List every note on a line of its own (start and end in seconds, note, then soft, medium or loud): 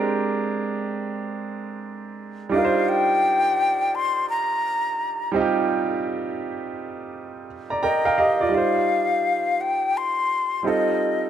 0.00 2.47 G#3 medium
0.00 2.48 C4 medium
0.00 2.49 D4 medium
0.00 2.50 G4 medium
0.00 2.51 A#4 medium
2.49 5.29 G3 medium
2.49 5.30 D4 medium
2.54 5.32 D#4 medium
2.54 5.33 F4 medium
2.54 2.90 F5 medium
2.58 2.64 A#4 medium
2.65 5.37 C5 medium
2.89 3.96 G5 loud
3.95 4.29 C6 loud
4.29 5.31 A#5 loud
5.32 8.12 G3 medium
5.32 8.13 C4 medium
5.36 8.14 D#4 medium
5.36 7.44 F4 medium
5.40 7.45 G4 medium
7.70 7.82 D5 medium
7.70 7.81 A#5 medium
7.83 8.04 A#4 medium
7.83 8.56 D#5 medium
7.83 8.04 G5 medium
7.83 8.03 A#5 medium
8.05 8.16 F5 medium
8.05 8.17 G5 medium
8.18 8.39 G4 medium
8.18 8.39 D#5 medium
8.18 8.50 F5 medium
8.41 8.53 F4 medium
8.41 8.74 D5 medium
8.49 10.58 G3 medium
8.49 10.60 D#4 soft
8.54 10.61 F4 medium
8.54 10.63 C5 medium
8.54 9.62 F5 medium
9.61 9.99 G5 medium
9.97 10.69 C6 loud
10.63 11.30 G3 medium
10.63 11.30 C4 medium
10.63 11.30 D#4 soft
10.63 11.30 F4 medium
10.67 11.30 A4 medium
10.67 11.30 D#5 medium